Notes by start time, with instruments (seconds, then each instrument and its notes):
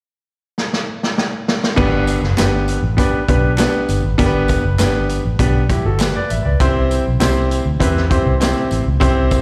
0.58 snare
0.73 snare
1.03 snare
1.18 snare
1.48 snare
1.64 snare
1.76 fingered electric bass G1, grand piano B3 D4 G4 B4, kick, crash
2.07 closed hi-hat, tambourine
2.22 fingered electric bass F#1, snare
2.37 fingered electric bass G1, grand piano B3 D4 G4 B4, snare, clap, closed hi-hat, tambourine
2.68 closed hi-hat, tambourine
2.82 fingered electric bass A1
2.97 grand piano B3 D4 G4 B4, kick, closed hi-hat, tambourine
3.13 muted fingered electric bass stroke
3.28 fingered electric bass B1, grand piano B3 D4 G4 B4, kick, closed hi-hat
3.58 grand piano B3 D4 G4 B4, snare, clap, closed hi-hat, tambourine
3.88 fingered electric bass G1, closed hi-hat, tambourine
4.04 fingered electric bass G#1
4.18 fingered electric bass G1, grand piano B3 D4 G4 A#4, kick, closed hi-hat
4.26 grand piano B4
4.48 kick, closed hi-hat, tambourine
4.65 fingered electric bass F#1
4.79 fingered electric bass G1, grand piano B3 D4 G4 B4, snare, clap, closed hi-hat, tambourine
5.09 closed hi-hat, tambourine
5.25 fingered electric bass A1
5.39 fingered electric bass B1, grand piano B3 D4 G4 B4, kick, closed hi-hat, tambourine
5.69 grand piano E4 G4, kick, closed hi-hat, tambourine
5.85 fingered electric bass G1, grand piano F#4 A4
5.99 grand piano G4 B4, snare, clap, closed hi-hat, tambourine
6.16 grand piano B4 D5
6.30 fingered electric bass A1, grand piano E5, closed hi-hat, tambourine
6.45 fingered electric bass C#2, grand piano B4 D5
6.60 fingered electric bass C2, grand piano C4 E4 G4 C5, kick, closed hi-hat, tambourine
6.91 closed hi-hat, tambourine
7.07 fingered electric bass B1
7.20 fingered electric bass C2, grand piano C4 E4 G4 C5, snare, clap, closed hi-hat, tambourine
7.51 closed hi-hat, tambourine
7.66 fingered electric bass D2
7.80 fingered electric bass E2, grand piano C4 E4 G4 B4, kick, closed hi-hat, tambourine
7.97 snare
8.10 grand piano C4 E4 G4 C5, kick, closed hi-hat
8.26 fingered electric bass C2
8.40 grand piano C4 E4 G4 C5, snare, clap, closed hi-hat, tambourine
8.71 fingered electric bass A1, closed hi-hat, tambourine
8.87 fingered electric bass C#2
9.00 fingered electric bass C2, grand piano C4 E4 G4 C5, kick, closed hi-hat, tambourine
9.31 kick, closed hi-hat, tambourine